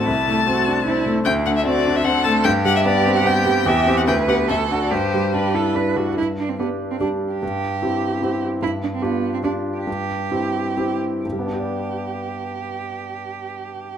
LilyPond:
<<
  \new Staff \with { instrumentName = "Violin" } { \time 3/4 \key g \major \tempo 4 = 145 a''2~ a''8 r8 | g''8 fis''16 e''16 d''8. e''16 fis''8 a''8 | g''8 fis''16 e''16 d''8. fis''16 g''4 | e''8. fis''16 g''8 fis''8 e''8. d''16 |
c''4 b'4 r4 | r2. | r2. | r2. |
r2. | r2. | r2. | }
  \new Staff \with { instrumentName = "Cello" } { \time 3/4 \key g \major e'4 fis'4 e'4 | d'4 fis'4 a'4 | g'2. | g'4 b'4 a'4 |
g'4 g'8 a'8 b'8 fis'8 | e'8 d'16 c'16 b8. c'16 d'8. g'16~ | g'2~ g'8 r8 | e'8 d'16 c'16 b8. c'16 d'8. g'16~ |
g'2~ g'8 r8 | g'2.~ | g'2. | }
  \new Staff \with { instrumentName = "Grand piano" } { \time 3/4 \key g \major c,8 a8 c'8 d'8 c'8 a8 | d,8 a8 c'8 d'8 c'8 a8 | g,8 g8 b8 c'8 b8 g8 | e,8 <c' g'>8 d,8 <b g'>8 d,8 <d' fis'>8 |
g,8 g8 d'8 e'8 d'8 g8 | g,4 <g d' g'>4 <g d' g'>4 | g,4 <c' e' g'>4 <c' e' g'>4 | g,4 <d' f' g'>4 <d' f' g'>4 |
g,4 <c' e' g'>4 <c' e' g'>4 | <g, g b d' g' d''>2.~ | <g, g b d' g' d''>2. | }
>>